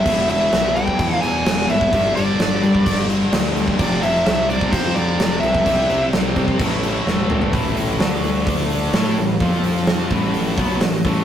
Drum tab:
CC |x-x-x-x-x-x-x-x-|x-x-x-x-x-x-x-x-|x-x-x-x-x-x-x-x-|x-x-x-x-x-x-----|
HH |----------------|----------------|----------------|----------------|
SD |----o-------o---|----o-------o---|---oo-------o---|----o-------o---|
T1 |----------------|----------------|----------------|-------------o--|
T2 |----------------|----------------|----------------|--------------o-|
FT |----------------|----------------|----------------|---------------o|
BD |o------oo------o|o------oo------o|o------oo------o|o-----ooo-------|

CC |----------------|----------------|
HH |o-o-o-o-o-o-o-o-|o-o-o-o-o-o-o-o-|
SD |----o-------o---|---oo-------o---|
T1 |----------------|----------------|
T2 |----------------|----------------|
FT |----------------|----------------|
BD |o-------o-------|o-----o---o---o-|